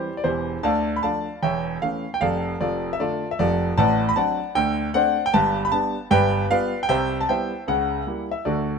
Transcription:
0.00 0.16 E4 medium
0.00 0.16 G4 medium
0.00 0.13 C5 medium
0.17 0.25 D5 medium
0.24 0.56 E1 medium
0.24 0.56 E2 medium
0.24 0.62 E4 medium
0.24 0.62 G4 medium
0.24 0.58 C5 medium
0.63 0.97 D2 medium
0.63 0.97 D3 medium
0.63 0.94 D5 medium
0.63 0.94 F5 medium
0.63 0.91 A5 loud
0.96 1.04 B5 medium
1.03 1.25 F3 soft
1.03 1.25 A3 soft
1.03 1.25 D4 medium
1.03 1.40 D5 medium
1.03 1.40 F5 medium
1.03 1.36 A5 medium
1.43 1.76 E1 medium
1.43 1.76 E2 medium
1.43 1.79 C#5 medium
1.43 1.80 E5 medium
1.43 1.76 G5 medium
1.82 2.04 E3 soft
1.82 2.04 A3 soft
1.82 2.04 C#4 medium
1.82 2.09 F5 medium
2.14 2.21 G5 medium
2.21 2.52 F1 medium
2.21 2.52 F2 medium
2.21 2.58 A4 medium
2.21 2.58 D5 medium
2.21 2.54 F5 loud
2.60 2.91 F1 medium
2.60 2.91 F2 medium
2.60 2.90 F4 medium
2.60 2.90 A4 medium
2.60 2.87 D5 medium
2.93 2.99 E5 medium
3.00 3.21 D3 soft
3.00 3.21 A3 soft
3.00 3.21 D4 medium
3.00 3.30 F4 medium
3.00 3.30 A4 medium
3.00 3.27 D5 medium
3.31 3.38 E5 medium
3.39 3.70 F1 medium
3.39 3.70 F2 medium
3.39 3.75 F4 medium
3.39 3.76 A4 medium
3.39 3.72 D5 loud
3.77 4.11 A1 loud
3.77 4.10 A2 medium
3.77 4.08 D5 medium
3.77 4.07 F#5 medium
3.77 4.04 A5 loud
4.09 4.16 B5 loud
4.16 4.38 F#3 medium
4.16 4.38 C4 medium
4.16 4.38 D4 medium
4.16 4.53 D5 medium
4.16 4.53 F#5 medium
4.16 4.49 A5 loud
4.55 4.88 D2 medium
4.55 4.88 D3 medium
4.55 4.88 G5 loud
4.94 5.16 A3 medium
4.94 5.16 C4 medium
4.94 5.16 D4 medium
4.94 5.25 C5 medium
4.94 5.25 D5 medium
4.94 5.21 F#5 loud
5.26 5.33 G5 loud
5.34 5.67 G1 medium
5.34 5.67 G2 loud
5.34 5.60 A5 loud
5.65 5.72 B5 loud
5.72 5.93 G3 medium
5.72 5.94 B3 medium
5.72 5.94 D4 medium
5.72 6.05 A5 loud
6.11 6.44 G1 medium
6.11 6.44 G2 loud
6.11 6.48 B4 medium
6.11 6.48 D5 medium
6.11 6.44 G5 loud
6.50 6.72 G3 medium
6.50 6.72 B3 soft
6.50 6.72 F4 medium
6.50 6.80 B4 medium
6.50 6.81 D5 medium
6.50 6.78 F5 loud
6.83 6.87 G5 medium
6.89 7.22 C2 medium
6.89 7.22 C3 loud
6.89 7.19 C5 medium
6.89 7.19 E5 medium
6.89 7.16 G5 loud
7.21 7.28 A5 medium
7.29 7.50 G3 medium
7.29 7.51 B3 medium
7.29 7.51 E4 soft
7.29 7.65 C5 medium
7.29 7.65 E5 medium
7.29 7.62 G5 medium
7.68 8.00 C#2 medium
7.68 8.01 C#3 medium
7.68 8.22 F#5 medium
8.07 8.28 G3 soft
8.07 8.28 A#3 soft
8.07 8.29 E4 medium
8.31 8.43 E5 medium
8.45 8.78 D2 medium
8.45 8.79 D3 medium
8.45 8.79 F#4 medium
8.45 8.79 A4 medium
8.45 8.79 D5 medium

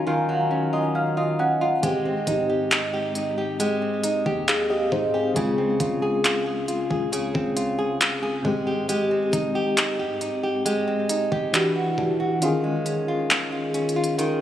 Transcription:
0.00 1.78 D#3 medium
0.00 0.28 F#3 medium
0.00 0.50 C#4 medium
0.00 1.79 C#4 medium
0.00 1.80 D#4 medium
0.00 1.81 F#4 medium
0.00 1.84 G#5 medium
0.00 1.84 A#5 medium
0.07 3.57 D#3 medium
0.07 0.72 F4 medium
0.07 0.69 F5 medium
0.29 1.83 F#3 medium
0.51 0.94 C#4 medium
0.73 1.16 F4 medium
0.73 0.94 D#5 medium
0.95 1.38 C#4 medium
0.95 1.16 F5 medium
1.17 1.60 F4 medium
1.17 1.38 D#5 medium
1.39 1.92 C#4 medium
1.39 1.80 F#5 medium
1.61 1.92 F4 medium
1.81 2.26 G#1 loud
1.81 5.31 G#2 medium
1.81 5.32 G#3 medium
1.81 3.59 G#3 medium
1.81 4.45 C4 medium
1.81 2.48 G4 medium
1.81 kick loud
1.81 closed hi-hat medium
1.86 4.45 G4 medium
2.05 3.81 C4 medium
2.27 4.22 G#2 loud
2.27 2.70 D#4 medium
2.27 kick loud
2.27 closed hi-hat medium
2.50 2.92 G4 medium
2.71 3.15 D#4 medium
2.71 clap loud
2.71 closed hi-hat medium
2.94 3.37 G4 medium
3.15 4.03 D#4 medium
3.15 closed hi-hat medium
3.38 3.59 G4 medium
3.60 7.10 G#3 medium
3.60 4.25 G4 medium
3.60 closed hi-hat medium
3.82 5.58 C4 medium
4.04 4.47 D#4 medium
4.04 closed hi-hat medium
4.26 4.90 D#2 loud
4.26 4.69 G4 medium
4.26 kick medium
4.48 4.91 D#4 medium
4.48 4.69 G#4 medium
4.48 4.69 F5 medium
4.48 clap loud
4.48 closed hi-hat medium
4.70 5.13 G4 medium
4.70 4.91 G4 medium
4.70 4.91 D#5 medium
4.92 5.34 G#2 medium
4.92 5.45 D#4 medium
4.92 5.13 D#4 medium
4.92 5.13 C5 medium
4.92 kick medium
5.14 5.36 C4 medium
5.14 5.36 G4 medium
5.14 5.56 G#4 medium
5.34 5.79 C#2 loud
5.34 8.40 C#3 medium
5.34 7.11 C#3 medium
5.34 8.41 G#3 medium
5.34 8.41 C4 medium
5.34 6.02 G#4 medium
5.34 kick loud
5.34 closed hi-hat medium
5.39 8.42 F4 medium
5.58 7.34 C4 medium
5.80 6.87 C#2 loud
5.80 6.23 F4 medium
5.80 kick medium
5.80 closed hi-hat medium
6.02 6.46 G#4 medium
6.24 6.67 F4 medium
6.24 clap loud
6.24 closed hi-hat medium
6.46 6.90 G#4 medium
6.68 7.55 F4 medium
6.68 closed hi-hat medium
6.90 7.33 C#2 loud
6.90 7.13 G#4 medium
6.90 kick medium
7.12 8.54 C#3 medium
7.12 7.78 G#4 medium
7.12 closed hi-hat medium
7.34 8.41 C#2 medium
7.34 9.11 C4 medium
7.34 kick medium
7.56 7.99 F4 medium
7.56 closed hi-hat medium
7.79 8.22 G#4 medium
8.01 clap loud
8.01 closed hi-hat medium
8.23 8.66 G#4 medium
8.43 9.30 G#1 medium
8.43 11.49 G#2 medium
8.43 11.49 G#3 medium
8.43 8.88 G#3 medium
8.43 11.50 C4 medium
8.43 kick loud
8.48 11.51 G4 medium
8.67 8.89 G4 medium
8.89 10.64 G#3 medium
8.89 9.55 G4 medium
8.89 closed hi-hat medium
9.11 10.86 C4 medium
9.33 10.01 G#1 loud
9.33 9.76 D#4 medium
9.33 kick loud
9.33 closed hi-hat medium
9.55 9.99 G4 medium
9.77 10.20 D#4 medium
9.77 clap loud
9.77 closed hi-hat medium
9.99 10.41 G#2 loud
9.99 10.42 G4 medium
10.21 11.09 D#4 medium
10.21 closed hi-hat medium
10.43 10.65 G4 medium
10.65 11.63 G#3 medium
10.65 11.31 G4 medium
10.65 closed hi-hat medium
10.88 11.63 C4 medium
11.09 11.63 D#4 medium
11.09 closed hi-hat medium
11.32 11.95 E1 loud
11.32 11.63 G4 medium
11.32 kick medium
11.53 12.41 E3 medium
11.53 12.42 E3 medium
11.53 12.42 D4 medium
11.53 12.42 F#4 medium
11.53 12.43 G4 medium
11.53 clap loud
11.53 closed hi-hat medium
11.76 12.19 F#4 medium
11.98 12.42 D#1 loud
11.98 12.51 D4 medium
11.98 kick medium
12.20 12.42 F#4 medium
12.40 14.41 D#3 medium
12.40 14.18 D#3 medium
12.40 14.41 C#4 medium
12.40 13.07 F4 medium
12.40 14.41 F4 medium
12.40 closed hi-hat medium
12.45 14.41 G#4 medium
12.64 14.40 G#3 medium
12.86 13.29 C#4 medium
12.86 closed hi-hat medium
13.08 13.51 F4 medium
13.30 13.73 C#4 medium
13.30 clap loud
13.30 closed hi-hat medium
13.52 13.95 F4 medium
13.74 14.41 C#4 medium
13.74 closed hi-hat soft
13.89 closed hi-hat soft
13.96 14.18 F4 medium
14.04 closed hi-hat medium
14.18 14.41 D#3 medium
14.18 14.41 F4 medium
14.18 closed hi-hat medium

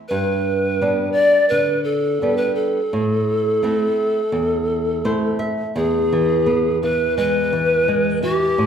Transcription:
0.08 0.79 G2 medium
0.08 1.11 B4 medium
0.81 1.38 G3 soft
0.81 1.38 B3 soft
0.81 1.38 D4 soft
1.12 1.47 D5 loud
1.49 2.20 D3 medium
1.49 1.83 B4 medium
1.84 2.39 A4 medium
2.22 2.79 G3 soft
2.22 2.79 B3 soft
2.22 2.79 D4 soft
2.37 2.54 B4 medium
2.55 5.35 A4 medium
2.93 3.62 A2 medium
3.63 4.20 A3 soft
3.63 4.20 C4 soft
3.63 4.20 E4 soft
4.32 5.02 E2 medium
5.05 5.61 A3 soft
5.05 5.62 C4 soft
5.05 5.62 E4 soft
5.05 5.38 C5 medium
5.39 5.73 E5 medium
5.76 8.53 E2 medium
5.76 6.78 G#4 medium
6.12 6.46 E3 medium
6.46 6.81 B3 medium
6.82 7.16 E3 soft
6.82 7.15 B4 medium
7.17 7.51 G#3 soft
7.17 8.19 B4 medium
7.53 7.86 E3 soft
7.88 8.22 G#3 soft
8.23 8.57 E3 soft
8.23 8.66 G4 medium
8.58 8.66 A2 medium

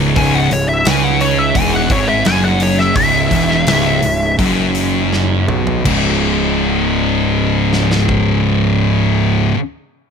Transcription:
0.00 0.13 C#1 medium
0.00 0.15 C#2 loud
0.00 5.82 C#3 medium
0.00 5.82 D#3 medium
0.00 5.82 G#3 medium
0.16 0.48 C#1 medium
0.16 0.50 C#2 loud
0.16 0.35 G#5 loud
0.16 kick loud
0.16 open hi-hat medium
0.35 0.51 F#5 medium
0.51 0.83 C#1 medium
0.51 0.79 C#2 medium
0.51 0.68 C#5 medium
0.51 open hi-hat soft
0.69 0.85 E5 medium
0.85 1.51 C#2 medium
0.85 1.54 C#3 loud
0.85 1.03 G#5 loud
0.85 snare loud
0.85 open hi-hat medium
1.04 1.20 F#5 medium
1.21 1.39 C#5 medium
1.21 open hi-hat medium
1.39 1.55 E5 medium
1.55 1.88 E1 medium
1.55 1.89 E2 loud
1.55 1.72 G#5 medium
1.55 kick loud
1.55 open hi-hat medium
1.73 1.90 F#5 loud
1.90 2.22 G#1 loud
1.90 2.24 G#2 loud
1.90 2.08 C#5 medium
1.90 kick loud
1.90 open hi-hat medium
2.09 2.25 E5 medium
2.25 2.92 F#1 medium
2.25 2.94 F#2 loud
2.25 2.43 G#5 loud
2.25 snare loud
2.25 open hi-hat medium
2.45 2.61 F#5 medium
2.60 2.79 C#5 medium
2.60 open hi-hat medium
2.79 2.95 E5 medium
2.79 snare soft
2.95 3.28 C#1 medium
2.95 3.30 C#2 loud
2.95 4.35 E5 loud
2.95 kick loud
2.95 open hi-hat medium
3.31 3.64 E1 loud
3.31 3.65 E2 loud
3.31 kick medium
3.31 open hi-hat medium
3.51 snare soft
3.67 4.00 C#1 medium
3.67 4.02 C#2 loud
3.67 snare loud
3.67 open hi-hat medium
4.02 4.36 C#1 medium
4.02 4.32 C#2 medium
4.02 open hi-hat medium
4.39 5.44 F#1 medium
4.39 5.47 F#2 loud
4.39 kick loud
4.39 open hi-hat medium
4.75 open hi-hat medium
5.13 snare medium
5.48 5.83 B1 loud
5.48 5.84 B2 loud
5.48 mid tom medium
5.67 floor tom medium
5.84 9.51 C#1 medium
5.84 9.54 C#2 medium
5.84 9.56 G#2 medium
5.84 9.52 C#3 medium
5.84 9.52 G#3 medium
5.84 9.52 D#4 medium
5.84 kick loud
5.84 crash medium
5.88 9.58 C#3 loud
7.73 snare medium
7.91 snare medium
8.09 kick medium

